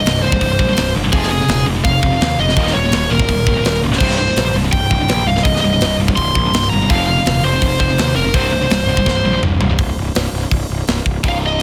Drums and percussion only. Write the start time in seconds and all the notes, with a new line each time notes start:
0.06 snare, open hi-hat
0.32 kick
0.41 kick, open hi-hat
0.59 kick
0.77 snare, open hi-hat
1.12 kick, open hi-hat
1.23 snare
1.48 snare, open hi-hat
1.85 kick, open hi-hat
2.03 kick
2.21 snare, open hi-hat
2.49 snare
2.56 kick, open hi-hat
2.67 snare
2.92 snare, open hi-hat
3.20 kick
3.29 kick, open hi-hat
3.47 kick
3.65 snare, open hi-hat
3.93 snare
4.00 kick, crash
4.11 snare
4.36 snare, open hi-hat
4.73 kick, open hi-hat
4.91 kick
5.08 snare, open hi-hat
5.37 snare
5.45 kick, open hi-hat
5.56 snare
5.81 snare, open hi-hat
6.08 kick
6.17 kick, open hi-hat
6.35 kick
6.54 snare, open hi-hat
6.90 kick, open hi-hat
7.26 snare, open hi-hat
7.62 kick, open hi-hat
7.80 kick
7.98 snare, open hi-hat
8.34 kick, open hi-hat
8.70 snare, open hi-hat
8.97 kick
9.06 kick, snare
9.43 mid tom
9.61 floor tom
9.78 kick, open hi-hat
10.15 snare, open hi-hat
10.51 kick, open hi-hat
10.87 snare, open hi-hat
11.06 kick
11.24 kick, open hi-hat